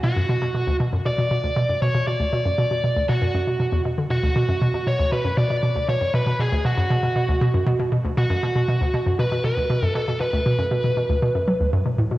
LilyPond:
<<
  \new Staff \with { instrumentName = "Lead electric guitar" } { \time 4/4 \key b \minor \tempo 4 = 118 fis'4. r8 d''4. cis''8 | d''2 fis'4. r8 | fis'4. cis''8 b'8 d''4 cis''8 | b'8 gis'8 fis'2~ fis'8 r8 |
fis'2 b'8 b'4 a'8 | b'2. r4 | }
  \new Staff \with { instrumentName = "Synth arpeggio sound" } { \clef bass \time 4/4 \key b \minor b,16 fis,16 b,16 b,16 b,16 d,16 b,16 fis,16 b,16 b,16 b,16 d,16 b,16 fis,16 b,16 b,16 | b,16 d,16 b,16 fis,16 b,16 b,16 b,16 d,16 b,16 fis,16 fis,16 b,16 b,16 e,16 b,16 d16 | b,16 d,16 b,16 fis,16 b,16 b,16 b,16 d,16 b,16 fis,16 b,16 b,16 b,16 d,16 b,16 fis,16 | b,16 b,16 b,16 d,16 b,16 fis,16 b,16 b,16 b,16 d,16 b,16 fis,16 b,16 b,16 b,16 d,16 |
b,16 fis,16 b,16 b,16 b,16 d,16 b,16 fis,16 b,16 b,16 b,16 d,16 b,16 fis,16 b,16 b,16 | b,16 d,16 b,16 fis,16 b,16 b,16 b,16 d,16 b,16 fis,16 fis16 d,16 fis,16 b,16 a,16 b,16 | }
>>